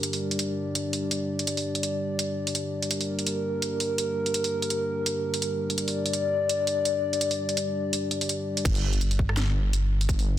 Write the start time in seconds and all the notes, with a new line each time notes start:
Already playing: G3 D4 G4
0.03 D5, closed hi-hat
0.13 open hi-hat
0.31 closed hi-hat
0.39 closed hi-hat
0.75 closed hi-hat
0.93 open hi-hat
1.11 closed hi-hat
1.39 closed hi-hat
1.47 closed hi-hat
1.57 open hi-hat
1.75 closed hi-hat
1.83 closed hi-hat
2.19 closed hi-hat
2.47 open hi-hat
2.55 closed hi-hat
2.82 closed hi-hat
2.90 A#4, closed hi-hat
3.01 open hi-hat
3.19 closed hi-hat
3.27 closed hi-hat
3.62 closed hi-hat
3.80 open hi-hat
3.98 closed hi-hat
4.26 closed hi-hat
4.34 closed hi-hat
4.44 open hi-hat
4.62 closed hi-hat
4.70 closed hi-hat
5.06 closed hi-hat
5.34 open hi-hat
5.42 closed hi-hat
5.70 closed hi-hat
5.77 D5, closed hi-hat
5.88 open hi-hat
6.06 closed hi-hat
6.13 closed hi-hat
6.49 closed hi-hat
6.67 open hi-hat
6.85 closed hi-hat
7.13 closed hi-hat
7.21 closed hi-hat
7.31 open hi-hat
7.49 closed hi-hat
7.57 closed hi-hat
7.93 closed hi-hat
8.11 closed hi-hat
8.21 open hi-hat
8.29 closed hi-hat
8.57 closed hi-hat
8.65 G1, kick, closed hi-hat, crash
8.75 open hi-hat
8.93 closed hi-hat
9.01 closed hi-hat
9.11 open hi-hat
9.19 kick
9.29 cross-stick
9.37 G1, snare, closed hi-hat
9.73 closed hi-hat
10.01 open hi-hat
10.09 kick, closed hi-hat
10.19 open hi-hat